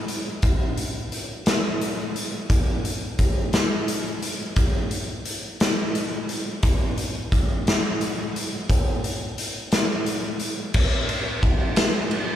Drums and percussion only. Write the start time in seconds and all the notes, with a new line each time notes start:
0.08 closed hi-hat
0.42 kick, closed hi-hat
0.77 closed hi-hat
1.12 closed hi-hat
1.46 snare, closed hi-hat
1.81 closed hi-hat
2.16 closed hi-hat
2.50 kick, closed hi-hat
2.85 closed hi-hat
3.19 kick, closed hi-hat
3.53 snare, closed hi-hat
3.88 closed hi-hat
4.22 closed hi-hat
4.56 kick, closed hi-hat
4.91 closed hi-hat
5.25 closed hi-hat
5.60 snare, closed hi-hat
5.95 closed hi-hat
6.29 closed hi-hat
6.63 kick, closed hi-hat
6.97 closed hi-hat
7.32 kick, closed hi-hat
7.67 snare, closed hi-hat
8.01 closed hi-hat
8.36 closed hi-hat
8.70 kick, closed hi-hat
9.04 closed hi-hat
9.38 closed hi-hat
9.72 snare, closed hi-hat
10.06 closed hi-hat
10.40 closed hi-hat
10.74 kick, crash
11.09 ride
11.43 kick, ride
11.76 snare, ride
12.11 ride